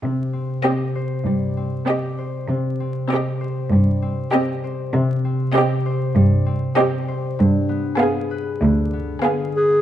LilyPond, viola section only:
\new Staff \with { instrumentName = "Viola section" } { \time 4/4 \key c \minor \tempo 4 = 98 r4 c'4 r4 c'4 | r4 c'4 r4 c'4 | r4 c'4 r4 c'4 | r4 b4 r4 b4 | }